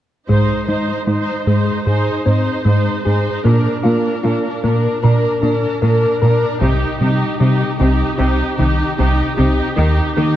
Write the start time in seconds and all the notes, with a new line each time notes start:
0.28 G#2 G#3 D#4 C5, taiko
0.68 G#2 G#3 D#4 C5
1.07 G#2 G#3 D#4 C5
1.47 G#2 G#3 D#4 C5
1.87 G#2 D#4 G#4 C5
2.26 G#2 C4 D#4 C5
2.65 G#2 G#3 D#4 C5
3.05 G#2 D#4 G#4 C5
3.44 A#2 A#3 D4 A#4
3.84 A#2 A#3 D4 F4 A#4
4.24 A#2 A#3 D4 F4 A#4
4.63 A#2 A#3 D4 A#4
5.03 A#2 D4 A#4
5.42 A#2 D4 A#4
5.82 A#2 A#3 D4 A#4
6.21 A#2 D4 A#4
6.61 C2 C3 D#4 G4, taiko
7.01 C3 G3 D#4 G4
7.40 C3 G3 D#4 G4
7.79 C2 C3 D#4 G4
8.18 C2 C3 C4 D#4 G4
8.57 C2 C3 D#3 D#4 G4
8.98 C2 C3 D#4 G4
9.37 C2 C3 C4 D#4 G4
9.76 D#2 D#3 D#4 G4
10.16 D#3 A#3 D#4 G4